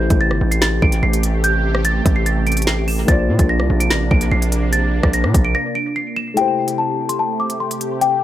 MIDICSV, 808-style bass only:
0, 0, Header, 1, 2, 480
1, 0, Start_track
1, 0, Tempo, 410959
1, 1681, Time_signature, 4, 2, 24, 8
1, 9621, End_track
2, 0, Start_track
2, 0, Title_t, "808-style bass"
2, 0, Program_c, 0, 38
2, 121, Note_on_c, 0, 33, 109
2, 360, Note_on_c, 0, 31, 100
2, 378, Note_off_c, 0, 33, 0
2, 474, Note_off_c, 0, 31, 0
2, 480, Note_on_c, 0, 33, 101
2, 941, Note_off_c, 0, 33, 0
2, 961, Note_on_c, 0, 33, 103
2, 1191, Note_off_c, 0, 33, 0
2, 1201, Note_on_c, 0, 33, 109
2, 2354, Note_off_c, 0, 33, 0
2, 2401, Note_on_c, 0, 33, 103
2, 3554, Note_off_c, 0, 33, 0
2, 3600, Note_on_c, 0, 34, 104
2, 3840, Note_on_c, 0, 46, 100
2, 3858, Note_off_c, 0, 34, 0
2, 3954, Note_off_c, 0, 46, 0
2, 3961, Note_on_c, 0, 34, 111
2, 4200, Note_on_c, 0, 36, 105
2, 4218, Note_off_c, 0, 34, 0
2, 4315, Note_off_c, 0, 36, 0
2, 4321, Note_on_c, 0, 34, 106
2, 4560, Note_on_c, 0, 33, 100
2, 4578, Note_off_c, 0, 34, 0
2, 4680, Note_on_c, 0, 34, 101
2, 4698, Note_off_c, 0, 33, 0
2, 4794, Note_off_c, 0, 34, 0
2, 4801, Note_on_c, 0, 34, 105
2, 5031, Note_off_c, 0, 34, 0
2, 5040, Note_on_c, 0, 34, 109
2, 5847, Note_off_c, 0, 34, 0
2, 5881, Note_on_c, 0, 34, 112
2, 6120, Note_on_c, 0, 46, 102
2, 6138, Note_off_c, 0, 34, 0
2, 6234, Note_off_c, 0, 46, 0
2, 6241, Note_on_c, 0, 34, 108
2, 6481, Note_off_c, 0, 34, 0
2, 9621, End_track
0, 0, End_of_file